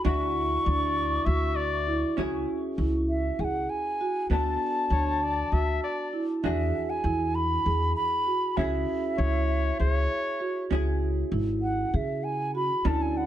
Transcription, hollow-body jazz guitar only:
0.05 2.13 D4 medium
0.05 2.14 E4 medium
0.05 2.15 F#4 medium
2.17 4.26 C#4 medium
2.17 4.27 E4 medium
2.17 4.27 G#4 medium
4.31 6.40 B3 medium
4.31 6.40 D4 medium
4.31 6.41 A4 medium
6.44 8.53 D4 medium
6.44 8.54 F#4 medium
6.44 8.54 G#4 medium
8.57 10.67 C#4 medium
8.57 10.67 E4 medium
8.57 10.68 G#4 medium
10.71 12.81 C#4 medium
10.71 12.81 E4 medium
10.71 12.82 G#4 medium
12.85 13.26 C#4 medium
12.85 13.26 D4 medium
12.85 13.26 A4 medium

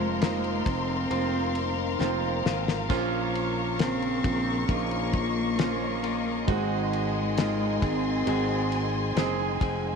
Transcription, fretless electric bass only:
0.00 0.62 F1 loud
0.66 1.08 F1 medium
1.11 1.96 F1 medium
2.01 2.42 F1 medium
2.46 2.87 G#1 medium
2.90 4.20 A#1 medium
4.25 4.66 A#1 medium
4.69 6.44 A#1 medium
6.48 7.78 G#1 loud
7.82 8.24 G#1 loud
8.27 9.13 G#1 loud
9.16 9.58 F#1 medium
9.61 9.96 F1 loud

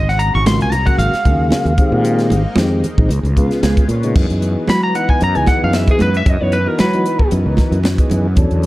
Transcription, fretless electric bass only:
0.00 0.32 G#1 loud
0.35 0.59 G#1 medium
0.61 0.86 C2 medium
0.98 1.12 G#1 loud
1.25 1.50 D#2 medium
1.65 1.77 D#2 medium
1.92 2.33 A#2 medium
2.31 2.44 G#1 medium
2.56 2.82 F2 medium
2.98 3.08 A#1 medium
3.09 3.23 C#2 loud
3.23 3.49 C#2 medium
3.63 3.76 C#2 loud
3.88 4.14 A#2 medium
4.16 4.29 F#2 loud
4.30 4.55 F#2 medium
4.68 4.93 F#3 medium
5.22 5.35 F#2 loud
5.36 5.46 C#2 medium
5.47 muted fretless electric bass stroke soft
5.64 5.87 F#2 medium
6.01 6.25 F#2 loud
6.26 6.40 F#2 loud
6.42 6.66 F#2 medium
6.80 7.04 F#3 medium
7.32 7.45 F#2 loud
7.46 7.57 C#2 medium
7.58 muted fretless electric bass stroke soft
7.71 7.97 F#2 medium
8.11 8.36 F#2 loud
8.37 8.50 E2 loud
8.51 8.66 E2 medium

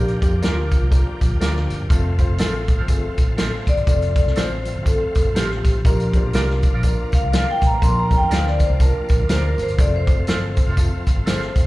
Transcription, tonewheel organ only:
0.00 5.81 F3 medium
0.00 1.86 A#3 medium
0.00 1.86 D4 medium
0.00 1.88 G4 medium
1.89 5.80 A3 medium
1.89 5.80 C4 medium
1.89 5.80 F4 medium
5.85 11.67 F3 medium
5.85 9.75 A#3 medium
5.85 9.76 D4 medium
5.85 11.67 F4 medium
9.77 11.67 A3 medium
9.77 11.67 C4 medium

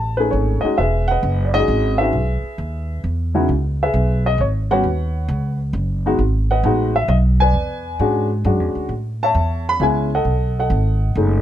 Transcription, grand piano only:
0.00 0.16 A5 medium
0.17 0.61 A3 medium
0.17 0.62 C#4 medium
0.17 0.61 D#4 medium
0.17 0.62 G#4 medium
0.17 0.31 B4 medium
0.31 0.64 C#5 medium
0.61 0.77 G#3 medium
0.61 0.77 C#4 soft
0.61 0.77 D#4 medium
0.61 0.76 D#5 medium
0.65 0.77 F#4 medium
0.78 1.51 G#4 medium
0.78 1.10 B4 medium
0.78 1.07 E5 medium
1.08 1.66 B4 medium
1.08 1.52 D#5 medium
1.08 1.45 F#5 loud
1.45 1.54 D5 medium
1.54 1.96 G#3 medium
1.54 1.96 C#4 soft
1.54 1.96 D#4 soft
1.54 1.97 F#4 medium
1.54 2.00 G#4 medium
1.54 1.96 D#5 loud
1.98 2.12 G#3 medium
1.98 2.13 C#4 medium
1.98 2.13 D#4 soft
1.98 2.13 F#4 medium
1.98 3.01 G#4 medium
1.98 3.01 B4 soft
1.98 2.99 E5 medium
3.34 3.47 C#3 medium
3.34 3.48 B3 medium
3.34 3.48 D#4 medium
3.34 3.48 E4 medium
3.34 3.48 F#4 medium
3.83 4.37 G#4 medium
3.83 4.37 B4 medium
3.83 4.28 E5 medium
4.26 4.39 D#5 medium
4.41 4.47 C#5 medium
4.71 4.83 G3 medium
4.71 4.84 B3 medium
4.71 4.84 C#4 medium
4.71 4.84 F#4 medium
4.71 5.57 B4 medium
4.71 5.57 C#5 medium
4.71 5.57 F#5 loud
6.06 6.19 G#3 medium
6.06 6.18 B3 medium
6.06 6.19 D#4 medium
6.06 6.19 F#4 medium
6.51 7.06 B4 medium
6.51 7.06 D#5 medium
6.51 6.93 F#5 medium
6.65 6.93 G#3 medium
6.65 6.92 B3 medium
6.65 6.93 D#4 medium
6.65 6.93 F#4 medium
6.96 7.10 E5 medium
7.09 7.16 D#5 medium
7.40 8.27 B4 medium
7.40 8.28 D5 medium
7.40 8.27 G#5 loud
8.00 8.28 G#3 medium
8.00 8.28 C#4 medium
8.00 8.28 D4 medium
8.00 8.28 F#4 medium
8.45 8.90 G#3 medium
8.45 8.90 C#4 soft
8.45 8.90 D4 soft
8.45 8.91 F#4 medium
9.23 9.78 C#5 medium
9.23 9.78 E5 medium
9.23 9.64 A5 loud
9.69 9.82 B5 loud
9.80 10.08 G#3 medium
9.80 10.08 B3 medium
9.80 10.09 C#4 medium
9.80 10.09 E4 medium
9.80 10.14 G#5 medium
10.15 10.58 A4 medium
10.15 10.58 D#5 medium
10.15 10.55 F#5 medium
10.59 11.41 A4 medium
10.59 11.41 D#5 medium
10.59 11.41 F#5 medium
11.17 11.41 G#3 soft
11.17 11.41 A3 soft
11.17 11.41 C#4 soft
11.17 11.41 D#4 medium

